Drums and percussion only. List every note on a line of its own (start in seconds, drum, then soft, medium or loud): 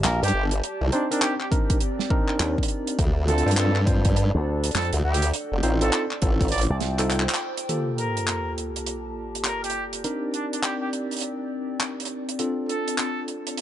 0.04 clap loud
0.04 snare soft
0.04 closed hi-hat medium
0.23 closed hi-hat medium
0.28 closed hi-hat medium
0.51 closed hi-hat medium
0.64 closed hi-hat medium
0.92 closed hi-hat soft
1.12 closed hi-hat medium
1.22 clap loud
1.22 closed hi-hat medium
1.40 clap soft
1.52 kick loud
1.52 closed hi-hat soft
1.70 kick loud
1.70 closed hi-hat medium
1.80 closed hi-hat medium
1.99 snare soft
2.10 kick loud
2.28 clap soft
2.40 clap loud
2.40 closed hi-hat medium
2.58 kick medium
2.63 closed hi-hat medium
2.68 closed hi-hat medium
2.87 closed hi-hat medium
2.99 kick loud
2.99 closed hi-hat medium
3.28 closed hi-hat soft
3.38 closed hi-hat soft
3.48 closed hi-hat soft
3.51 closed hi-hat medium
3.56 clap loud
3.56 closed hi-hat medium
3.76 clap soft
3.87 kick loud
3.87 closed hi-hat soft
4.05 kick loud
4.05 closed hi-hat medium
4.16 closed hi-hat medium
4.64 closed hi-hat medium
4.71 closed hi-hat soft
4.75 clap loud
4.75 snare medium
4.75 closed hi-hat medium
4.81 closed hi-hat soft
4.85 closed hi-hat soft
4.93 closed hi-hat medium
5.14 closed hi-hat medium
5.22 closed hi-hat medium
5.34 closed hi-hat medium
5.63 closed hi-hat medium
5.81 closed hi-hat medium
5.92 clap loud
5.92 closed hi-hat medium
6.11 clap soft
6.22 kick loud
6.22 closed hi-hat medium
6.41 kick loud
6.41 closed hi-hat soft
6.48 closed hi-hat soft
6.52 closed hi-hat medium
6.58 closed hi-hat soft
6.61 closed hi-hat medium
6.80 snare soft
6.80 closed hi-hat medium
6.99 clap soft
6.99 closed hi-hat medium
7.10 clap medium
7.10 closed hi-hat medium
7.20 clap medium
7.29 clap medium
7.29 closed hi-hat medium
7.34 clap medium
7.34 closed hi-hat medium
7.57 closed hi-hat medium
7.69 closed hi-hat medium
7.98 closed hi-hat soft
8.17 closed hi-hat medium
8.27 clap loud
8.27 closed hi-hat medium
8.58 closed hi-hat soft
8.76 closed hi-hat medium
8.86 closed hi-hat medium
9.35 closed hi-hat medium
9.44 clap loud
9.44 closed hi-hat medium
9.64 closed hi-hat medium
9.70 closed hi-hat medium
9.93 closed hi-hat medium
10.04 closed hi-hat medium
10.34 closed hi-hat medium
10.53 closed hi-hat medium
10.63 clap loud
10.63 closed hi-hat medium
10.93 closed hi-hat medium
11.11 closed hi-hat soft
11.13 closed hi-hat soft
11.17 closed hi-hat soft
11.18 closed hi-hat medium
11.20 closed hi-hat medium
11.80 clap loud
11.80 closed hi-hat medium
12.00 closed hi-hat medium
12.05 closed hi-hat medium
12.29 closed hi-hat medium
12.39 closed hi-hat medium
12.69 closed hi-hat medium
12.88 closed hi-hat medium
12.98 clap loud
12.98 closed hi-hat medium
13.28 closed hi-hat soft
13.47 closed hi-hat medium
13.58 closed hi-hat medium